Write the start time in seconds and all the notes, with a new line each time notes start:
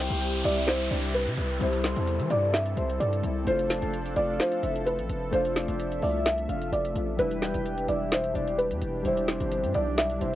Already playing: C3 G3 C4 E4 G4 C5, downlifter
0.00 G5
0.08 C2 G3 C4, closed hi-hat
0.12 G4
0.21 closed hi-hat
0.34 closed hi-hat
0.42 C2 G3 C4 D5 E5, closed hi-hat
0.46 E4
0.55 G3 C4
0.59 E4
0.67 C5, snare, closed hi-hat
0.80 closed hi-hat
0.91 C2 D5, closed hi-hat
1.03 closed hi-hat
1.15 B4, closed hi-hat
1.27 C3, closed hi-hat
1.37 C2, closed hi-hat
1.59 C2 G3 C4 A4 C5, closed hi-hat
1.63 E4
1.73 closed hi-hat
1.84 C5, snare, closed hi-hat
1.94 E2 G3 C4, closed hi-hat
1.98 E4
2.07 closed hi-hat
2.20 E3, closed hi-hat
2.29 G2 G3 C4 D5, closed hi-hat
2.33 E4
2.41 G3 C4
2.45 E4
2.53 E5, snare, closed hi-hat
2.66 closed hi-hat
2.75 C2 G3 C4 C5, closed hi-hat
2.79 E4
2.90 closed hi-hat
3.00 G2 D5, closed hi-hat
3.13 closed hi-hat
3.21 C2 G3 C4, closed hi-hat
3.25 E4
3.44 F1 F3 A3 D4 C5, closed hi-hat
3.49 F4
3.59 closed hi-hat
3.70 A5, snare, closed hi-hat
3.80 F1 A3 D4, closed hi-hat
3.84 F4
3.94 closed hi-hat
4.06 closed hi-hat
4.14 F1 A3 D4 D5 F5, closed hi-hat
4.18 F4
4.27 A3 D4
4.31 F4
4.40 C5, snare, closed hi-hat
4.52 closed hi-hat
4.63 F1 E5, closed hi-hat
4.76 closed hi-hat
4.86 B4, closed hi-hat
4.99 A1, closed hi-hat
5.09 F1, closed hi-hat
5.31 F1 A3 D4 C5 E5, closed hi-hat
5.35 F4
5.45 closed hi-hat
5.56 D5, snare, closed hi-hat
5.66 F1 A3 D4, closed hi-hat
5.70 F4
5.80 closed hi-hat
5.92 closed hi-hat
6.00 C2 A3 D4 D5 E5, open hi-hat
6.04 F4
6.13 A3 D4
6.17 F4
6.26 E5, snare, closed hi-hat
6.38 closed hi-hat
6.47 F1 A3 D4 F5, closed hi-hat
6.51 F4
6.62 closed hi-hat
6.72 F1 D5, closed hi-hat
6.85 closed hi-hat
6.93 A1 A3 D4, closed hi-hat
6.98 F4
7.17 E1 B2 E3 G3 D4 G4 B4, closed hi-hat
7.21 E4
7.31 closed hi-hat
7.42 G5, snare, closed hi-hat
7.54 E1, closed hi-hat
7.66 closed hi-hat
7.78 closed hi-hat
7.86 E1 G3 D4 D5 E5, closed hi-hat
7.91 E4
8.12 C5, snare, closed hi-hat
8.24 closed hi-hat
8.33 E1 G3 D4 D5, closed hi-hat
8.37 E4
8.48 closed hi-hat
8.58 B4, closed hi-hat
8.71 E2, closed hi-hat
8.82 E1, closed hi-hat
9.03 E1 G3 D4 C5, closed hi-hat
9.07 E4
9.17 closed hi-hat
9.28 C5, snare, closed hi-hat
9.40 G1, closed hi-hat
9.52 closed hi-hat
9.64 G2, closed hi-hat
9.73 B1 G3 D4 D5, closed hi-hat
9.77 E4
9.98 E5, snare, closed hi-hat
10.10 closed hi-hat
10.19 E1 G3 D4 C5, closed hi-hat
10.23 E4